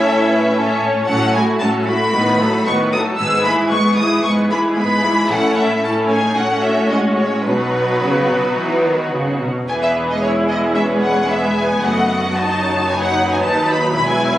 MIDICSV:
0, 0, Header, 1, 6, 480
1, 0, Start_track
1, 0, Key_signature, 4, "major"
1, 0, Tempo, 528169
1, 982, Time_signature, 4, 2, 24, 8
1, 5785, Tempo, 554529
1, 8665, Tempo, 532387
1, 12893, End_track
2, 0, Start_track
2, 0, Title_t, "Violin section"
2, 0, Program_c, 0, 48
2, 0, Note_on_c, 0, 76, 65
2, 718, Note_off_c, 0, 76, 0
2, 984, Note_on_c, 0, 78, 68
2, 1205, Note_off_c, 0, 78, 0
2, 1224, Note_on_c, 0, 80, 67
2, 1296, Note_off_c, 0, 80, 0
2, 1463, Note_on_c, 0, 81, 70
2, 1536, Note_off_c, 0, 81, 0
2, 1700, Note_on_c, 0, 83, 71
2, 2407, Note_off_c, 0, 83, 0
2, 2419, Note_on_c, 0, 85, 69
2, 2492, Note_off_c, 0, 85, 0
2, 2667, Note_on_c, 0, 87, 59
2, 2739, Note_off_c, 0, 87, 0
2, 2896, Note_on_c, 0, 88, 72
2, 3133, Note_off_c, 0, 88, 0
2, 3140, Note_on_c, 0, 83, 66
2, 3212, Note_off_c, 0, 83, 0
2, 3374, Note_on_c, 0, 85, 76
2, 3612, Note_off_c, 0, 85, 0
2, 3614, Note_on_c, 0, 87, 66
2, 3850, Note_on_c, 0, 85, 63
2, 3851, Note_off_c, 0, 87, 0
2, 3922, Note_off_c, 0, 85, 0
2, 4098, Note_on_c, 0, 83, 61
2, 4170, Note_off_c, 0, 83, 0
2, 4344, Note_on_c, 0, 83, 64
2, 4812, Note_off_c, 0, 83, 0
2, 4823, Note_on_c, 0, 78, 69
2, 5062, Note_off_c, 0, 78, 0
2, 5067, Note_on_c, 0, 76, 57
2, 5304, Note_off_c, 0, 76, 0
2, 5305, Note_on_c, 0, 81, 62
2, 5378, Note_off_c, 0, 81, 0
2, 5546, Note_on_c, 0, 80, 58
2, 5782, Note_off_c, 0, 80, 0
2, 5784, Note_on_c, 0, 78, 54
2, 6016, Note_on_c, 0, 76, 53
2, 6017, Note_off_c, 0, 78, 0
2, 6250, Note_on_c, 0, 75, 49
2, 6253, Note_off_c, 0, 76, 0
2, 6320, Note_off_c, 0, 75, 0
2, 6489, Note_on_c, 0, 73, 48
2, 6728, Note_off_c, 0, 73, 0
2, 6728, Note_on_c, 0, 71, 52
2, 8151, Note_off_c, 0, 71, 0
2, 8657, Note_on_c, 0, 80, 54
2, 8707, Note_off_c, 0, 80, 0
2, 8784, Note_on_c, 0, 76, 50
2, 8856, Note_off_c, 0, 76, 0
2, 9039, Note_on_c, 0, 75, 41
2, 9146, Note_on_c, 0, 73, 51
2, 9153, Note_off_c, 0, 75, 0
2, 9218, Note_off_c, 0, 73, 0
2, 9399, Note_on_c, 0, 75, 47
2, 9471, Note_off_c, 0, 75, 0
2, 9626, Note_on_c, 0, 76, 45
2, 9698, Note_off_c, 0, 76, 0
2, 9867, Note_on_c, 0, 78, 55
2, 10105, Note_off_c, 0, 78, 0
2, 10111, Note_on_c, 0, 76, 50
2, 10352, Note_off_c, 0, 76, 0
2, 10356, Note_on_c, 0, 80, 49
2, 10591, Note_on_c, 0, 78, 56
2, 10595, Note_off_c, 0, 80, 0
2, 11073, Note_off_c, 0, 78, 0
2, 11077, Note_on_c, 0, 81, 60
2, 11547, Note_on_c, 0, 80, 60
2, 11555, Note_off_c, 0, 81, 0
2, 11670, Note_off_c, 0, 80, 0
2, 11676, Note_on_c, 0, 78, 55
2, 11910, Note_off_c, 0, 78, 0
2, 11933, Note_on_c, 0, 80, 51
2, 11976, Note_off_c, 0, 80, 0
2, 12039, Note_on_c, 0, 81, 55
2, 12268, Note_off_c, 0, 81, 0
2, 12276, Note_on_c, 0, 83, 56
2, 12500, Note_off_c, 0, 83, 0
2, 12511, Note_on_c, 0, 83, 63
2, 12627, Note_off_c, 0, 83, 0
2, 12630, Note_on_c, 0, 80, 60
2, 12863, Note_off_c, 0, 80, 0
2, 12893, End_track
3, 0, Start_track
3, 0, Title_t, "Violin section"
3, 0, Program_c, 1, 48
3, 0, Note_on_c, 1, 73, 47
3, 28, Note_on_c, 1, 69, 50
3, 267, Note_off_c, 1, 69, 0
3, 275, Note_on_c, 1, 71, 53
3, 488, Note_off_c, 1, 73, 0
3, 511, Note_off_c, 1, 71, 0
3, 519, Note_on_c, 1, 73, 53
3, 520, Note_on_c, 1, 69, 47
3, 978, Note_off_c, 1, 73, 0
3, 982, Note_off_c, 1, 69, 0
3, 990, Note_on_c, 1, 66, 47
3, 993, Note_on_c, 1, 69, 42
3, 1208, Note_off_c, 1, 66, 0
3, 1210, Note_off_c, 1, 69, 0
3, 1231, Note_on_c, 1, 64, 43
3, 1231, Note_on_c, 1, 66, 47
3, 1457, Note_off_c, 1, 66, 0
3, 1463, Note_on_c, 1, 69, 45
3, 1467, Note_off_c, 1, 64, 0
3, 1467, Note_on_c, 1, 66, 41
3, 1701, Note_off_c, 1, 66, 0
3, 1704, Note_off_c, 1, 69, 0
3, 1710, Note_on_c, 1, 64, 43
3, 1712, Note_on_c, 1, 66, 45
3, 1941, Note_off_c, 1, 66, 0
3, 1947, Note_off_c, 1, 64, 0
3, 1950, Note_on_c, 1, 71, 42
3, 1952, Note_on_c, 1, 66, 44
3, 2170, Note_off_c, 1, 71, 0
3, 2171, Note_off_c, 1, 66, 0
3, 2197, Note_on_c, 1, 63, 45
3, 2199, Note_on_c, 1, 69, 43
3, 2430, Note_off_c, 1, 63, 0
3, 2431, Note_off_c, 1, 69, 0
3, 2431, Note_on_c, 1, 71, 45
3, 2433, Note_on_c, 1, 66, 46
3, 2666, Note_off_c, 1, 71, 0
3, 2667, Note_off_c, 1, 66, 0
3, 2667, Note_on_c, 1, 63, 42
3, 2669, Note_on_c, 1, 69, 45
3, 2903, Note_off_c, 1, 63, 0
3, 2904, Note_off_c, 1, 69, 0
3, 2907, Note_on_c, 1, 68, 46
3, 2908, Note_on_c, 1, 71, 46
3, 3127, Note_off_c, 1, 68, 0
3, 3127, Note_off_c, 1, 71, 0
3, 3139, Note_on_c, 1, 68, 41
3, 3140, Note_on_c, 1, 64, 43
3, 3373, Note_off_c, 1, 68, 0
3, 3380, Note_off_c, 1, 64, 0
3, 3384, Note_on_c, 1, 68, 40
3, 3385, Note_on_c, 1, 71, 42
3, 3610, Note_off_c, 1, 68, 0
3, 3621, Note_on_c, 1, 68, 45
3, 3622, Note_off_c, 1, 71, 0
3, 3625, Note_on_c, 1, 64, 43
3, 3856, Note_off_c, 1, 68, 0
3, 3862, Note_off_c, 1, 64, 0
3, 3865, Note_on_c, 1, 71, 46
3, 3867, Note_on_c, 1, 68, 41
3, 4085, Note_off_c, 1, 71, 0
3, 4086, Note_off_c, 1, 68, 0
3, 4098, Note_on_c, 1, 64, 41
3, 4099, Note_on_c, 1, 68, 43
3, 4332, Note_off_c, 1, 68, 0
3, 4338, Note_off_c, 1, 64, 0
3, 4342, Note_on_c, 1, 71, 42
3, 4343, Note_on_c, 1, 68, 43
3, 4568, Note_off_c, 1, 68, 0
3, 4578, Note_on_c, 1, 68, 39
3, 4579, Note_on_c, 1, 64, 41
3, 4580, Note_off_c, 1, 71, 0
3, 4810, Note_off_c, 1, 64, 0
3, 4819, Note_off_c, 1, 68, 0
3, 4819, Note_on_c, 1, 69, 44
3, 4821, Note_on_c, 1, 64, 45
3, 5267, Note_off_c, 1, 69, 0
3, 5268, Note_off_c, 1, 64, 0
3, 5304, Note_on_c, 1, 69, 43
3, 5306, Note_on_c, 1, 64, 43
3, 5539, Note_off_c, 1, 69, 0
3, 5540, Note_on_c, 1, 63, 43
3, 5541, Note_off_c, 1, 64, 0
3, 5541, Note_on_c, 1, 68, 44
3, 5779, Note_off_c, 1, 63, 0
3, 5785, Note_off_c, 1, 68, 0
3, 5787, Note_on_c, 1, 66, 44
3, 5789, Note_on_c, 1, 61, 45
3, 6730, Note_off_c, 1, 66, 0
3, 6737, Note_off_c, 1, 61, 0
3, 6737, Note_on_c, 1, 63, 42
3, 6740, Note_on_c, 1, 66, 41
3, 8455, Note_off_c, 1, 66, 0
3, 8488, Note_off_c, 1, 63, 0
3, 8661, Note_on_c, 1, 68, 33
3, 8662, Note_on_c, 1, 71, 34
3, 9115, Note_off_c, 1, 71, 0
3, 9142, Note_off_c, 1, 68, 0
3, 9152, Note_on_c, 1, 68, 37
3, 9638, Note_on_c, 1, 71, 39
3, 10104, Note_off_c, 1, 71, 0
3, 10115, Note_on_c, 1, 71, 40
3, 10586, Note_off_c, 1, 71, 0
3, 10595, Note_off_c, 1, 68, 0
3, 10602, Note_on_c, 1, 66, 37
3, 10602, Note_on_c, 1, 75, 38
3, 11062, Note_off_c, 1, 75, 0
3, 11073, Note_on_c, 1, 75, 40
3, 11308, Note_off_c, 1, 75, 0
3, 11313, Note_on_c, 1, 73, 41
3, 11554, Note_on_c, 1, 71, 41
3, 11557, Note_off_c, 1, 66, 0
3, 12026, Note_off_c, 1, 71, 0
3, 12032, Note_off_c, 1, 73, 0
3, 12037, Note_on_c, 1, 71, 42
3, 12498, Note_off_c, 1, 71, 0
3, 12507, Note_on_c, 1, 68, 39
3, 12509, Note_on_c, 1, 71, 43
3, 12893, Note_off_c, 1, 68, 0
3, 12893, Note_off_c, 1, 71, 0
3, 12893, End_track
4, 0, Start_track
4, 0, Title_t, "Viola section"
4, 0, Program_c, 2, 48
4, 0, Note_on_c, 2, 61, 48
4, 24, Note_on_c, 2, 64, 48
4, 495, Note_off_c, 2, 61, 0
4, 496, Note_off_c, 2, 64, 0
4, 506, Note_on_c, 2, 61, 42
4, 507, Note_off_c, 2, 61, 0
4, 507, Note_on_c, 2, 61, 48
4, 968, Note_off_c, 2, 61, 0
4, 977, Note_on_c, 2, 54, 50
4, 979, Note_on_c, 2, 61, 50
4, 1201, Note_off_c, 2, 54, 0
4, 1202, Note_off_c, 2, 61, 0
4, 1222, Note_on_c, 2, 66, 43
4, 1223, Note_on_c, 2, 57, 44
4, 1458, Note_on_c, 2, 61, 43
4, 1461, Note_on_c, 2, 54, 44
4, 1463, Note_off_c, 2, 57, 0
4, 1463, Note_off_c, 2, 66, 0
4, 1701, Note_off_c, 2, 61, 0
4, 1701, Note_on_c, 2, 57, 42
4, 1701, Note_on_c, 2, 66, 41
4, 1703, Note_off_c, 2, 54, 0
4, 1941, Note_on_c, 2, 51, 46
4, 1941, Note_on_c, 2, 59, 45
4, 1943, Note_off_c, 2, 57, 0
4, 1943, Note_off_c, 2, 66, 0
4, 2165, Note_off_c, 2, 51, 0
4, 2166, Note_off_c, 2, 59, 0
4, 2182, Note_on_c, 2, 54, 47
4, 2185, Note_on_c, 2, 57, 44
4, 2418, Note_on_c, 2, 59, 44
4, 2420, Note_on_c, 2, 51, 45
4, 2423, Note_off_c, 2, 54, 0
4, 2424, Note_off_c, 2, 57, 0
4, 2659, Note_off_c, 2, 59, 0
4, 2660, Note_off_c, 2, 51, 0
4, 2660, Note_on_c, 2, 54, 41
4, 2660, Note_on_c, 2, 57, 43
4, 2896, Note_on_c, 2, 59, 47
4, 2897, Note_on_c, 2, 56, 46
4, 2899, Note_off_c, 2, 57, 0
4, 2900, Note_off_c, 2, 54, 0
4, 3120, Note_off_c, 2, 59, 0
4, 3121, Note_off_c, 2, 56, 0
4, 3134, Note_on_c, 2, 52, 42
4, 3135, Note_on_c, 2, 56, 42
4, 3364, Note_off_c, 2, 56, 0
4, 3375, Note_on_c, 2, 56, 45
4, 3376, Note_on_c, 2, 59, 40
4, 3377, Note_off_c, 2, 52, 0
4, 3608, Note_off_c, 2, 56, 0
4, 3617, Note_off_c, 2, 59, 0
4, 3617, Note_on_c, 2, 52, 40
4, 3619, Note_on_c, 2, 56, 43
4, 3849, Note_off_c, 2, 56, 0
4, 3857, Note_off_c, 2, 52, 0
4, 3860, Note_on_c, 2, 56, 46
4, 3860, Note_on_c, 2, 59, 44
4, 4082, Note_off_c, 2, 56, 0
4, 4082, Note_off_c, 2, 59, 0
4, 4097, Note_on_c, 2, 52, 43
4, 4099, Note_on_c, 2, 56, 43
4, 4330, Note_off_c, 2, 56, 0
4, 4337, Note_off_c, 2, 52, 0
4, 4339, Note_on_c, 2, 59, 43
4, 4340, Note_on_c, 2, 56, 42
4, 4566, Note_off_c, 2, 56, 0
4, 4576, Note_on_c, 2, 52, 40
4, 4577, Note_on_c, 2, 56, 42
4, 4579, Note_off_c, 2, 59, 0
4, 4818, Note_off_c, 2, 52, 0
4, 4818, Note_off_c, 2, 56, 0
4, 4819, Note_on_c, 2, 61, 50
4, 4822, Note_on_c, 2, 57, 47
4, 5267, Note_off_c, 2, 61, 0
4, 5268, Note_off_c, 2, 57, 0
4, 5298, Note_on_c, 2, 57, 41
4, 5299, Note_on_c, 2, 61, 44
4, 5774, Note_off_c, 2, 57, 0
4, 5775, Note_off_c, 2, 61, 0
4, 5786, Note_on_c, 2, 57, 46
4, 5786, Note_on_c, 2, 61, 45
4, 6244, Note_off_c, 2, 57, 0
4, 6253, Note_on_c, 2, 56, 39
4, 6716, Note_off_c, 2, 61, 0
4, 6732, Note_on_c, 2, 59, 43
4, 6734, Note_on_c, 2, 54, 43
4, 6735, Note_off_c, 2, 56, 0
4, 8486, Note_off_c, 2, 59, 0
4, 8487, Note_off_c, 2, 54, 0
4, 8666, Note_on_c, 2, 52, 37
4, 8666, Note_on_c, 2, 59, 37
4, 9117, Note_off_c, 2, 52, 0
4, 9117, Note_off_c, 2, 59, 0
4, 9156, Note_on_c, 2, 64, 37
4, 9158, Note_on_c, 2, 56, 38
4, 9630, Note_on_c, 2, 61, 40
4, 9633, Note_off_c, 2, 64, 0
4, 10111, Note_off_c, 2, 61, 0
4, 10111, Note_on_c, 2, 59, 41
4, 10590, Note_on_c, 2, 57, 40
4, 10597, Note_off_c, 2, 56, 0
4, 11063, Note_off_c, 2, 57, 0
4, 11070, Note_on_c, 2, 63, 35
4, 11071, Note_on_c, 2, 54, 40
4, 11074, Note_off_c, 2, 59, 0
4, 11539, Note_off_c, 2, 63, 0
4, 11550, Note_on_c, 2, 63, 40
4, 12487, Note_off_c, 2, 63, 0
4, 12510, Note_on_c, 2, 64, 47
4, 12893, Note_off_c, 2, 54, 0
4, 12893, Note_off_c, 2, 64, 0
4, 12893, End_track
5, 0, Start_track
5, 0, Title_t, "Cello section"
5, 0, Program_c, 3, 48
5, 0, Note_on_c, 3, 45, 51
5, 942, Note_off_c, 3, 45, 0
5, 982, Note_on_c, 3, 45, 61
5, 1405, Note_off_c, 3, 45, 0
5, 1461, Note_on_c, 3, 45, 53
5, 1886, Note_off_c, 3, 45, 0
5, 1941, Note_on_c, 3, 45, 52
5, 2366, Note_off_c, 3, 45, 0
5, 2419, Note_on_c, 3, 45, 49
5, 2842, Note_off_c, 3, 45, 0
5, 2898, Note_on_c, 3, 44, 58
5, 3322, Note_off_c, 3, 44, 0
5, 3375, Note_on_c, 3, 44, 55
5, 3800, Note_off_c, 3, 44, 0
5, 3859, Note_on_c, 3, 44, 49
5, 4282, Note_off_c, 3, 44, 0
5, 4336, Note_on_c, 3, 44, 51
5, 4761, Note_off_c, 3, 44, 0
5, 4813, Note_on_c, 3, 45, 49
5, 5746, Note_off_c, 3, 45, 0
5, 5782, Note_on_c, 3, 45, 43
5, 6714, Note_off_c, 3, 45, 0
5, 6731, Note_on_c, 3, 47, 39
5, 7169, Note_off_c, 3, 47, 0
5, 7219, Note_on_c, 3, 49, 48
5, 7445, Note_off_c, 3, 49, 0
5, 7459, Note_on_c, 3, 47, 38
5, 7697, Note_on_c, 3, 52, 47
5, 7702, Note_off_c, 3, 47, 0
5, 7935, Note_off_c, 3, 52, 0
5, 7942, Note_on_c, 3, 51, 40
5, 8178, Note_on_c, 3, 49, 41
5, 8183, Note_off_c, 3, 51, 0
5, 8418, Note_off_c, 3, 49, 0
5, 8421, Note_on_c, 3, 47, 38
5, 8658, Note_on_c, 3, 40, 40
5, 8662, Note_off_c, 3, 47, 0
5, 10554, Note_off_c, 3, 40, 0
5, 10592, Note_on_c, 3, 42, 45
5, 12003, Note_off_c, 3, 42, 0
5, 12032, Note_on_c, 3, 39, 40
5, 12498, Note_off_c, 3, 39, 0
5, 12505, Note_on_c, 3, 40, 50
5, 12893, Note_off_c, 3, 40, 0
5, 12893, End_track
6, 0, Start_track
6, 0, Title_t, "Double bass section"
6, 0, Program_c, 4, 48
6, 980, Note_on_c, 4, 33, 52
6, 1382, Note_off_c, 4, 33, 0
6, 1938, Note_on_c, 4, 33, 51
6, 2342, Note_off_c, 4, 33, 0
6, 2894, Note_on_c, 4, 32, 54
6, 3298, Note_off_c, 4, 32, 0
6, 4817, Note_on_c, 4, 33, 49
6, 5266, Note_off_c, 4, 33, 0
6, 5780, Note_on_c, 4, 33, 44
6, 6218, Note_off_c, 4, 33, 0
6, 6729, Note_on_c, 4, 35, 38
6, 7182, Note_off_c, 4, 35, 0
6, 8665, Note_on_c, 4, 28, 41
6, 10558, Note_off_c, 4, 28, 0
6, 10591, Note_on_c, 4, 30, 44
6, 12002, Note_off_c, 4, 30, 0
6, 12027, Note_on_c, 4, 39, 42
6, 12495, Note_off_c, 4, 39, 0
6, 12501, Note_on_c, 4, 28, 49
6, 12893, Note_off_c, 4, 28, 0
6, 12893, End_track
0, 0, End_of_file